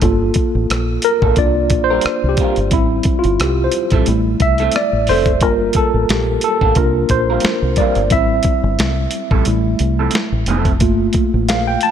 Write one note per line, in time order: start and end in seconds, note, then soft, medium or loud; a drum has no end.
0.02 0.30 G1 loud
0.02 1.33 A#3 soft
0.02 1.34 F4 medium
0.02 1.33 A4 medium
0.02 kick medium
0.02 closed hi-hat medium
0.34 kick medium
0.34 closed hi-hat medium
0.55 0.67 A1 medium
0.70 0.97 A#1 medium
0.70 cross-stick loud
0.70 closed hi-hat medium
1.02 1.19 A#4 loud
1.02 closed hi-hat medium
1.22 1.35 A1 medium
1.22 1.36 F3 medium
1.22 1.36 A#3 medium
1.22 1.36 D4 medium
1.22 1.36 A4 medium
1.22 kick medium
1.36 1.71 C2 medium
1.36 2.68 A#3 soft
1.36 2.68 D4 soft
1.36 2.68 F4 medium
1.36 1.84 D5 medium
1.36 kick medium
1.36 closed hi-hat medium
1.70 1.98 A#1 medium
1.70 kick medium
1.70 closed hi-hat medium
1.84 2.29 C5 loud
1.90 2.04 G3 medium
1.90 2.04 C4 medium
1.90 2.03 F4 medium
1.90 2.03 A#4 medium
2.01 muted fingered electric bass stroke medium
2.01 closed hi-hat medium
2.06 cross-stick loud
2.24 2.36 C2 medium
2.29 2.74 G4 medium
2.37 2.55 G3 medium
2.37 2.55 C4 medium
2.37 2.55 F4 medium
2.37 kick medium
2.37 closed hi-hat medium
2.42 2.56 A#4 medium
2.56 2.72 G1 medium
2.56 closed hi-hat soft
2.71 2.99 A1 loud
2.71 3.69 G3 medium
2.71 3.69 C4 soft
2.71 3.19 E4 medium
2.71 kick loud
2.71 closed hi-hat medium
3.03 kick medium
3.03 closed hi-hat medium
3.19 3.41 F4 medium
3.24 3.37 G1 medium
3.24 closed hi-hat soft
3.40 3.67 C2 medium
3.40 3.64 G4 medium
3.40 cross-stick loud
3.40 closed hi-hat medium
3.64 3.94 C5 medium
3.72 closed hi-hat medium
3.90 4.04 A1 medium
3.90 4.06 C4 medium
3.90 4.06 E4 medium
3.90 4.05 A4 medium
3.90 kick loud
3.90 closed hi-hat soft
3.95 4.06 G3 medium
4.06 4.34 A1 medium
4.06 5.04 G3 medium
4.06 5.04 A3 soft
4.06 5.05 E4 medium
4.06 closed hi-hat medium
4.40 4.68 C2 medium
4.40 4.73 E5 medium
4.40 kick medium
4.40 closed hi-hat medium
4.58 4.73 A3 medium
4.58 4.73 C4 medium
4.58 4.73 E4 medium
4.58 4.73 A4 medium
4.58 closed hi-hat soft
4.72 muted clean electric guitar stroke soft
4.72 closed hi-hat medium
4.76 5.10 D5 medium
4.76 cross-stick loud
4.93 5.10 A1 medium
5.07 5.42 F1 medium
5.07 5.28 A3 medium
5.07 5.29 C4 medium
5.07 5.29 E4 medium
5.07 5.43 C5 medium
5.07 open hi-hat soft
5.11 5.29 A4 medium
5.26 kick medium
5.26 closed hi-hat soft
5.41 5.69 G1 loud
5.41 6.72 G3 soft
5.41 6.73 A#3 soft
5.41 6.73 F4 medium
5.41 5.77 A#4 medium
5.41 kick medium
5.41 closed hi-hat medium
5.73 6.10 A4 medium
5.73 kick medium
5.73 closed hi-hat medium
5.94 6.06 A1 medium
6.09 6.37 A#1 medium
6.09 6.41 G4 medium
6.09 snare loud
6.09 closed hi-hat medium
6.41 6.78 A4 medium
6.41 closed hi-hat medium
6.61 6.74 A1 medium
6.61 6.76 F3 medium
6.61 6.75 A#3 medium
6.61 6.75 D4 medium
6.61 6.75 A4 medium
6.61 kick loud
6.75 7.04 C2 loud
6.75 7.73 A#3 medium
6.75 7.74 D4 soft
6.75 7.74 F4 medium
6.75 7.11 A#4 medium
6.75 kick loud
6.75 closed hi-hat medium
7.09 7.38 A#1 medium
7.09 7.80 C5 medium
7.09 kick medium
7.09 closed hi-hat medium
7.30 7.43 G3 soft
7.30 7.43 C4 soft
7.30 7.43 F4 medium
7.30 7.42 A#4 medium
7.40 muted fingered electric bass stroke soft
7.40 closed hi-hat medium
7.45 muted clean electric guitar stroke soft
7.45 snare loud
7.62 7.75 C2 medium
7.76 7.98 G3 medium
7.76 7.98 C4 medium
7.76 7.99 F4 medium
7.76 8.12 D5 medium
7.76 kick medium
7.76 closed hi-hat medium
7.80 7.99 A#4 medium
7.95 8.11 G1 medium
7.95 closed hi-hat soft
8.10 8.39 A1 medium
8.10 9.42 G3 medium
8.10 9.42 C4 medium
8.10 9.43 E4 medium
8.10 9.76 E5 medium
8.10 kick loud
8.10 closed hi-hat medium
8.43 kick medium
8.43 closed hi-hat medium
8.64 8.76 G1 medium
8.79 9.06 C2 medium
8.79 snare loud
8.79 closed hi-hat medium
9.11 closed hi-hat medium
9.31 9.44 A1 medium
9.31 9.45 G3 medium
9.31 9.45 C4 medium
9.31 9.45 E4 medium
9.31 9.44 A4 medium
9.31 kick loud
9.45 9.74 A1 medium
9.45 10.77 G3 soft
9.45 10.77 A3 soft
9.45 10.77 E4 medium
9.45 closed hi-hat medium
9.79 10.08 C2 medium
9.79 closed hi-hat medium
9.99 10.13 F3 soft
9.99 10.12 C4 soft
9.99 10.12 E4 medium
9.99 10.12 A4 medium
10.11 closed hi-hat medium
10.15 muted clean electric guitar stroke soft
10.15 snare loud
10.32 10.45 A1 medium
10.46 10.81 F1 loud
10.46 10.69 F3 medium
10.46 10.69 C4 medium
10.46 10.69 E4 medium
10.46 10.70 A4 medium
10.46 closed hi-hat medium
10.65 kick medium
10.65 closed hi-hat soft
10.80 11.09 G1 medium
10.80 11.78 A3 medium
10.80 11.78 A#3 soft
10.80 11.79 F4 medium
10.80 kick loud
10.80 closed hi-hat medium
11.13 kick medium
11.13 closed hi-hat medium
11.34 11.49 A1 medium
11.49 11.76 A#1 medium
11.49 11.67 F5 medium
11.49 snare loud
11.49 closed hi-hat medium
11.67 11.83 G5 medium
11.81 11.91 A5 loud
11.81 closed hi-hat medium